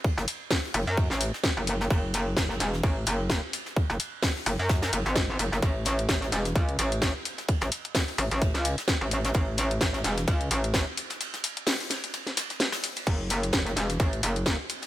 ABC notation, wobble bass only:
X:1
M:4/4
L:1/16
Q:"Swing 16ths" 1/4=129
K:F#m
V:1 name="Wobble bass" clef=bass
z F,,, z4 F,,, F,,2 A,,,2 z2 F,,,3 | F,,,4 F,,,2 E,,,2 A,,,2 F,,,3 z3 | z F,,, z4 F,,, F,,3 F,,, G,,,3 F,,, F,,, | A,,,4 A,,,2 E,,,2 C,,2 A,,,3 z3 |
z A,,, z4 A,,, A,,,2 C,,2 z2 A,,,3 | A,,,4 A,,,2 E,,,2 C,,2 A,,,3 z3 | z16 | F,,,4 F,,,2 E,,,2 A,,,2 F,,,3 z3 |]